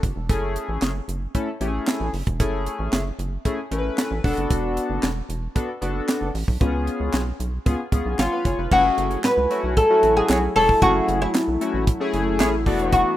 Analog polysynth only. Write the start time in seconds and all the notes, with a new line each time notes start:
0.29 A3 C#4 E4 G#4
1.35 A3 C#4 E4 A4
1.61 A3 C#4 E4 G4
1.68 G#4
2.40 A3 C#4 E4 G#4
3.45 A3 C#4 E4 G#4
3.71 A3 C#4 E4 A#4
3.78 B4
4.24 B3 D4 F#4 A4
5.55 B3 D4 F#4 A4
5.81 B3 D4 F#4 A4
6.60 B3 C#4 F4 G#4
7.66 B3 C#4 F4 G#4
7.92 B3 C#4 F4 G#4
8.19 C#5 G#5
8.32 B4 F5
8.45 G#4 C#5
8.59 F4 B4
8.71 A3 C#4 E4 G#4
9.50 A3 C#4 E4 F#4
9.90 A3 C#4 E4 F#4
10.82 A3 C#4 E4 G#4
11.61 A3 C#4 E4 F#4
12.00 A3 C#4 E4 G#4
12.66 A3 B3 D4 F#4